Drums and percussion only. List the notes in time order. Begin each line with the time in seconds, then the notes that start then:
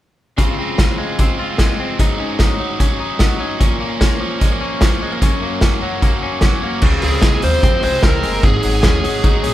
0.38 kick, closed hi-hat
0.78 kick, snare, closed hi-hat
1.19 kick, closed hi-hat
1.58 kick, snare, closed hi-hat
1.99 kick, closed hi-hat
2.39 kick, snare, closed hi-hat
2.80 kick, closed hi-hat
3.19 kick, snare, closed hi-hat
3.61 kick, closed hi-hat
4.01 kick, snare, closed hi-hat
4.41 kick, closed hi-hat
4.81 kick, snare, closed hi-hat
5.22 kick, closed hi-hat
5.61 kick, snare, closed hi-hat
6.02 kick, closed hi-hat
6.41 kick, snare, closed hi-hat
6.82 kick, crash
7.02 open hi-hat
7.22 kick, snare, closed hi-hat
7.42 open hi-hat
7.63 kick, closed hi-hat
7.83 open hi-hat
8.03 kick, snare, closed hi-hat
8.23 open hi-hat
8.43 kick, closed hi-hat
8.63 open hi-hat
8.83 kick, snare, closed hi-hat
9.04 open hi-hat
9.24 kick, closed hi-hat
9.44 open hi-hat